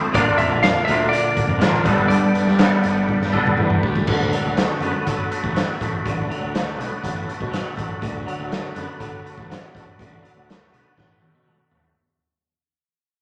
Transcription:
Already playing: F3 A3 C4 E4 A4
0.01 high conga
0.12 A#1 A#2 D3 A#3 D4 F4 A#4 D5, kick, closed hi-hat
0.16 F4
0.38 F2 E5, closed hi-hat
0.50 A#1, high conga
0.63 F2 F5, snare, closed hi-hat
0.85 D2 A#3 D4 F4 E5, closed hi-hat, low conga
0.89 A#2 D3
1.09 D5, closed hi-hat
1.37 kick, closed hi-hat
1.47 F2, high conga, low conga
1.59 A1 A#2 D3 A#3 D4 F4, snare, closed hi-hat
1.73 high conga
1.84 G1 G3 B3 D4 G4 A4 B4, kick, closed hi-hat, low conga
1.98 high conga
2.08 G2 D5, closed hi-hat
2.34 G2, closed hi-hat
2.47 G2, snare, high conga
2.58 G2 G3 B3 D4, snare, closed hi-hat
2.62 A4
2.83 G1, closed hi-hat, low conga
3.09 kick
3.22 snare
3.33 B3 D4 A4, kick
3.37 G3
3.46 mid tom, high conga, low conga
3.57 E2, mid tom
3.70 mid tom
3.83 D2, kick, low conga
3.96 kick, high conga
4.07 D2 D3 D4 F#4 A4 B4, kick, crash
4.20 high conga
4.32 F#3, closed hi-hat, high conga
4.45 D2
4.57 A3, snare, closed hi-hat
4.68 high conga
4.81 F#2 B3, closed hi-hat, low conga
4.93 high conga
5.07 D3 F#3, kick, closed hi-hat
5.31 A3, closed hi-hat
5.44 A1, kick
5.56 F#3, snare, closed hi-hat
5.80 A1 A3, kick, closed hi-hat, low conga
6.05 A1 D3, kick, closed hi-hat
6.28 F#3, closed hi-hat, high conga
6.41 D2
6.55 A3, snare, closed hi-hat
6.66 high conga
6.77 B1 B3, closed hi-hat, low conga
6.89 high conga
7.03 A1 F#3, kick, closed hi-hat
7.28 A3, closed hi-hat
7.41 B2, kick
7.51 F#3, snare, closed hi-hat
7.76 A1 A3, kick, closed hi-hat, low conga
8.02 D2 D3, kick, closed hi-hat
8.26 F#3, closed hi-hat
8.39 D2
8.51 A3, snare, closed hi-hat
8.76 F#2 B3, closed hi-hat
9.00 D3 F#3, kick, closed hi-hat
9.26 A3, closed hi-hat
9.38 A1, kick
9.50 F#3, snare, closed hi-hat
9.75 A1 A3, kick, closed hi-hat
9.99 A1 D3, kick, closed hi-hat
10.23 F#3, closed hi-hat
10.37 D2
10.49 A3, snare, closed hi-hat
10.73 B1 B3, closed hi-hat
10.98 A1 F#3, kick, snare
11.22 A3, high tom
11.34 B2, high tom
11.47 F#3, mid tom
11.71 A1 A3, floor tom
11.84 floor tom

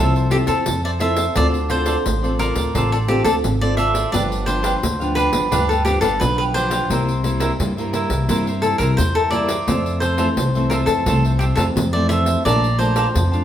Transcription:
Already playing: C2 F3 C4 E4 F4 A4 C5
0.00 A4 E5
0.15 A4 C5 E5, pandeiro
0.30 C4 E4 F4 G4 A4 C5 E5, pandeiro
0.46 F2 F4 A4 C5 E5, pandeiro
0.66 F2 C3, pandeiro
0.84 A4 C5 D5 E5, pandeiro
0.99 C4 E4 F4 A4 C5 E5, pandeiro
1.16 A4 C5 E5, pandeiro
1.35 D2 D3 C4 F4 A4 C5 D5, pandeiro
1.54 pandeiro
1.69 C4 F4 A4 C5 D5, pandeiro
1.85 F4 A4 C5 D5, pandeiro
2.06 A1 A2, pandeiro
2.23 C4 F4 A4 C5 D5, pandeiro
2.39 F4 A#4 C5 D5, pandeiro
2.56 D2, pandeiro
2.74 A1 D3 C4 F4 A4 C5 D5, pandeiro
2.92 A4 C5 D5, pandeiro
3.08 C4 F4 G4 A4 C5 D5, pandeiro
3.24 D2 F4 A4 C5 D5, pandeiro
3.44 G#1, pandeiro
3.61 C4 F4 A4 C5 D5, pandeiro
3.77 F4 A4 C5 D5 E5, pandeiro
3.94 A4 C5 D5, pandeiro
4.12 G1 G2 F3 B3 D4 G4 B4 D5 F5, pandeiro
4.32 pandeiro
4.46 F3 D4 G4 B4 C5 F5, pandeiro
4.63 D4 G4 B4 F5, pandeiro
4.82 D2 D3, pandeiro
5.00 F3 B3 D4 G4 B4 F5, pandeiro
5.15 D4 G4 B4 F5, pandeiro
5.33 G1 F3 B3 D4, pandeiro
5.51 D2 G2 F3 B3 D4 G4 B4 F5, pandeiro
5.69 G4 A4 B4 F5, pandeiro
5.85 F3 B3 D4 G4 B4 F5, pandeiro
6.01 G1 D4 G4 A4 B4 F5, pandeiro
6.20 B1 D3 F3 B3 D4 B4, pandeiro
6.38 G4 B4 F5, pandeiro
6.54 F3 D4 G4 B4 C5 F5, pandeiro
6.70 G4 B4 F5, pandeiro
6.90 C2 C3 G3 A#3 E4 A#4 C5 E5, pandeiro
7.08 pandeiro
7.23 G3 A#3 E4 A#4 C5 E5, pandeiro
7.40 E4 A#4 C5 E5, pandeiro
7.59 G2 G3 A#3 E4, pandeiro
7.77 G3 A#3 E4 A#4 C5 E5, pandeiro
7.93 E4 A#4 C5 E5, pandeiro
8.10 C2, pandeiro
8.29 G2 C3 G3 A#3 E4 A#4 C5 E5, pandeiro
8.47 A#4 C5 E5, pandeiro
8.62 G3 A#3 E4 A4 A#4 C5 E5, pandeiro
8.78 C2 E4 A#4 C5 E5, pandeiro
8.97 E2 G2 C5, pandeiro
9.15 A4 A#4 C5 E5, pandeiro
9.31 G3 A#3 E4 A#4 C5 D5 E5, pandeiro
9.48 A#4 C5 E5, pandeiro
9.67 F2 A3 C4 F4 A4 C5 E5, pandeiro
9.86 pandeiro
10.00 F4 A4 C5 E5, pandeiro
10.18 E3 A3 C4 F4 A4 C5 E5, pandeiro
10.37 C2 C3, pandeiro
10.55 E3 A3 C4 A4 C5 E5, pandeiro
10.70 F4 A4 A#4 C5 E5, pandeiro
10.86 F2 A4, pandeiro
11.06 C2 F2 E3 A3 C4 F4 A4 C5 E5, pandeiro
11.25 A4 C5 E5, pandeiro
11.39 F4 G4 A4 C5 E5, pandeiro
11.56 F2 E3 A3 C4 F4 A4 C5 E5, pandeiro
11.76 F2 C3, pandeiro
11.93 E3 A3 C4 A4 C5 D5 E5, pandeiro
12.09 F4 A4 C5 E5, pandeiro
12.26 A4 C5 E5, pandeiro
12.45 A#1 A#2 F3 A3 D4 A#4 D5 F5 A5, pandeiro
12.64 pandeiro
12.79 F3 A3 D4 A#4 C5 D5 F5 A5, pandeiro
12.96 A#4 D5 F5 A5, pandeiro
13.15 F2, pandeiro
13.32 F3 A3 D4 D5 F5 A5, pandeiro

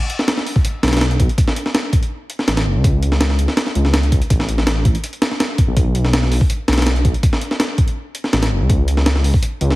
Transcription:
0.10 closed hi-hat
0.19 snare
0.28 snare, closed hi-hat
0.37 snare
0.46 open hi-hat
0.56 kick
0.65 closed hi-hat
0.83 B1, snare, closed hi-hat
0.88 snare, closed hi-hat
0.93 snare, closed hi-hat
0.97 snare, closed hi-hat
1.01 snare, closed hi-hat
1.11 closed hi-hat
1.20 B1, kick, closed hi-hat
1.29 closed hi-hat
1.38 kick, closed hi-hat
1.48 snare
1.56 closed hi-hat
1.66 snare
1.75 snare, closed hi-hat
1.93 kick, closed hi-hat
2.03 closed hi-hat
2.30 closed hi-hat
2.39 snare
2.48 A1, snare, closed hi-hat
2.57 snare, closed hi-hat
2.66 F#1
2.75 C#2
2.84 kick, closed hi-hat
3.03 closed hi-hat
3.12 snare
3.21 snare, closed hi-hat
3.30 snare
3.39 closed hi-hat
3.48 snare
3.57 snare, closed hi-hat
3.67 snare
3.75 C#2, closed hi-hat
3.85 snare
3.94 snare, closed hi-hat
4.03 closed hi-hat
4.12 C#2, kick, closed hi-hat
4.22 closed hi-hat
4.30 A1, kick, closed hi-hat
4.40 snare
4.49 closed hi-hat
4.58 snare
4.67 snare, closed hi-hat
4.85 kick, closed hi-hat
4.95 closed hi-hat
5.04 closed hi-hat
5.13 closed hi-hat
5.22 snare, closed hi-hat
5.31 snare
5.40 snare, closed hi-hat
5.58 kick, closed hi-hat
5.68 B1
5.77 kick, closed hi-hat
5.95 closed hi-hat
6.05 snare
6.13 snare, closed hi-hat
6.23 snare
6.32 open hi-hat
6.41 kick
6.50 closed hi-hat
6.68 B1, snare, closed hi-hat
6.73 snare, closed hi-hat
6.78 snare, closed hi-hat
6.82 snare, closed hi-hat
6.86 snare, closed hi-hat
6.96 closed hi-hat
7.05 B1, kick, closed hi-hat
7.14 closed hi-hat
7.23 kick, closed hi-hat
7.33 snare
7.41 closed hi-hat
7.51 snare
7.60 snare, closed hi-hat
7.78 kick, closed hi-hat
7.88 closed hi-hat
8.15 closed hi-hat
8.24 snare
8.33 A1, snare, closed hi-hat
8.42 snare, closed hi-hat
8.51 F#1
8.61 C#2
8.70 kick, closed hi-hat
8.88 closed hi-hat
8.97 snare
9.06 snare, closed hi-hat
9.16 snare
9.24 open hi-hat
9.34 kick
9.43 closed hi-hat
9.61 C#2, closed hi-hat
9.71 snare

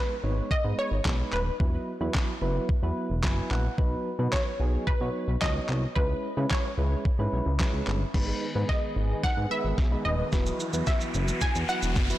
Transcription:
Already playing: G#3 B3 D#4 B4
0.23 G#1 G#3 B3 D#4 C#5
0.51 G#2 D#5, kick
0.64 G#2 G#3 B3 D#4 B4
0.79 C#5
0.92 G#1
1.05 B1 G#3 B3 D#4 B4, kick, snare, clap
1.33 D#1 B4, clap
1.60 E1 F#3 B3 E4 B4, kick
2.01 E2 F#3 B3 E4 B4
2.15 kick, snare, clap
2.42 F#1 F#3 B3 E4 B4
2.69 E2, kick
2.83 E2 F#3 B3 E4 B4
3.10 E1
3.23 F#1 F#3 B3 E4 B4 G#5, kick, snare, clap
3.51 A#1 F#5, clap
3.78 B1 F#3 B3 D#4 B4, kick
4.19 B2 F#3 B3 D#4 B4
4.32 C#5, kick, snare, clap
4.60 B1 F#3 B3 D#4 G#4
4.87 B2 B4, kick
5.01 B2 F#3 B3 D#4 C#5
5.28 B1
5.41 C#2 F#3 B3 D#4 C#5 D#5, kick, snare, clap
5.69 C2, clap
5.95 C#2 G#3 C#4 E4 B4, kick
6.37 C#3 G#3 C#4 E4 B4
6.50 C#5, kick, snare, clap
6.78 C#2 G#3 C#4 E4 B4
7.05 kick
7.19 G#2 G#3 C#4 E4 B4
7.32 B1
7.46 C#2
7.60 G#3 C#4 E4 B4, kick, snare, clap
7.73 C#2
7.87 G1, clap
8.14 G#1 D#3 G#3 B3 D#4 G#4 B4, kick, snare, crash, riser
8.28 G#4
8.42 D#4
8.55 G#2 G#3 B3 D#4 B4
8.69 G#4 D#5, kick, snare
8.96 G#1 B3
9.10 G#4
9.23 D#4 F#5, kick, snare
9.37 G#2 B4
9.50 D#3 G#3 B3 G#4 B4 E5
9.65 G#1 B5
9.78 B1 B3, kick, snare
9.91 G#3 B3 D#4 G#4 B4
10.05 D#1 D#4 D#5
10.19 B4
10.32 E1 E3 F#3 B3 E4 F#4 B4, kick, snare, shaker
10.46 F#4, shaker
10.60 E4, shaker
10.73 E2 F#3 B3 E4 B4, shaker
10.87 F#4 E5, kick, snare, shaker
11.01 shaker
11.14 F#1 B3, shaker
11.28 F#4, shaker
11.41 E2 E4 G#5, kick, snare, shaker
11.55 E2 B4, shaker
11.69 F#3 B3 E4 F#4 B4 F#5, shaker
11.82 E1 B5, shaker
11.96 F#1 B3, kick, snare, shaker
12.10 F#3 B3 E4 F#4 B4, shaker

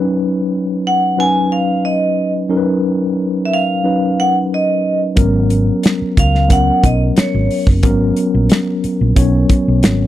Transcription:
Already playing: F#3 C#4 D#4 B4
0.87 F#5
1.17 F#3 C#4 D#4 B4 G#5
1.52 F5
1.85 D#5
2.49 F#3 C#4 D#4 A#4
2.57 B4
3.45 E5
3.53 F5
3.84 F#3 C#4 D#4 B4
4.20 F#5
4.54 D#5
5.15 G#1 F#3 B3 C#4 A#4, kick, closed hi-hat
5.50 closed hi-hat
5.83 snare, closed hi-hat
6.02 muted fingered electric bass stroke
6.17 C#2 F5, kick, closed hi-hat
6.35 snare
6.48 F#3 B3 C#4 A#4 F#5, kick, closed hi-hat
6.84 B1 D#5, kick, closed hi-hat
7.17 C#5, muted fingered electric bass stroke, snare, closed hi-hat
7.34 G#1
7.51 open hi-hat
7.67 F#1, kick
7.83 G#1 F#3 B3 C#4 A#4, kick, closed hi-hat
8.16 closed hi-hat
8.34 A#1
8.49 snare, closed hi-hat
8.84 muted fingered electric bass stroke, closed hi-hat
9.01 A#1
9.16 B1 F#3 B3 C#4 C#5, kick, closed hi-hat
9.49 kick, closed hi-hat
9.68 B1
9.83 G#1, snare, closed hi-hat

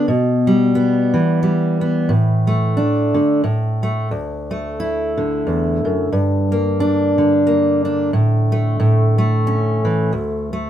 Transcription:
0.08 B2
0.47 G3
0.75 B3
1.14 E3
1.43 G3
1.81 B3
2.09 A2
2.47 A3
2.77 D4
3.14 D3
3.44 A2
3.83 A3
4.11 D2
4.51 A3
4.80 E4
5.17 D3
5.47 E2
5.85 F#2
6.12 G2
6.52 A#3
6.80 D4
7.18 D3
7.47 A#3
7.85 D4
8.13 A2
8.52 A3
8.80 A2
9.18 A3
9.47 C#4
9.85 E3
10.13 D2
10.53 A3

